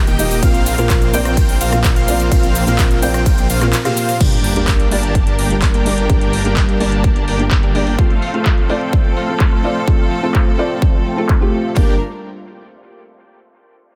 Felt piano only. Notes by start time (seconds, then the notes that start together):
Already playing: D#3 A#3 D#4 G4 A#4
0.18 A#2 A#3 D#4 G4 D#5
0.42 A#2 A#3 C4 F4 A#4
0.78 A#2 A#3 C4 F4 A#4
1.13 A#2 A#3 C4 F4 D5
1.72 A#2 A#3 C4 F4 A#4
2.07 A#2 A#3 C4 F4 D5
2.31 A#2 A#3 C4 F4 A#4
2.66 A#2 A#3 C4 F4 A#4
3.02 A#2 A#3 C4 F4 D5
3.61 A#2 A#3 C4 F4 A#4
3.85 A#2 A#3 C4 F4 G4
4.20 G2 A#3 D4 G4 A#4
4.55 G2 A#3 D4 G4 A#4
4.91 G2 A#3 D4 G4 D5
5.50 G2 A#3 D4 G4 A#4
5.85 G2 A#3 D4 G4 D5
6.09 G2 A#3 D4 G4 A#4
6.44 G2 A#3 D4 G4 A#4
6.80 G2 A#3 D4 G4 D5
7.39 G2 A#3 D4 G4 A#4
7.74 A#3 D4 G4 D5
7.98 A3 C4 F4 A4
8.33 A3 C4 F4 A4
8.69 A3 C4 F4 D5
9.28 A3 C4 F4 A4
9.63 A3 C4 F4 D5
9.87 A3 C4 F4 A4
10.22 A3 C4 F4 A4
10.58 A3 C4 F4 D5
11.17 A3 C4 F4 A4
11.41 A3 C4 F4 G4
11.75 A#3 D4 G4 A#4